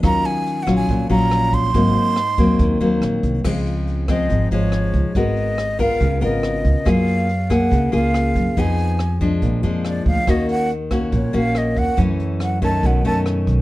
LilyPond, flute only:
\new Staff \with { instrumentName = "Flute" } { \time 4/4 \key des \major \tempo 4 = 141 bes''8 aes''8~ \tuplet 3/2 { aes''8 ges''8 aes''8~ } aes''8 bes''4 c'''8~ | c'''2. r4 | r4. ees''4 des''4. | ees''4. f''4 ees''4. |
f''4. ges''4 f''4. | aes''4. r4. d''8 f''8 | ees''8 ges''8 r4 des''8 f''8 ees''8 ges''8 | r4 ges''8 a''8 ges''8 a''8 r4 | }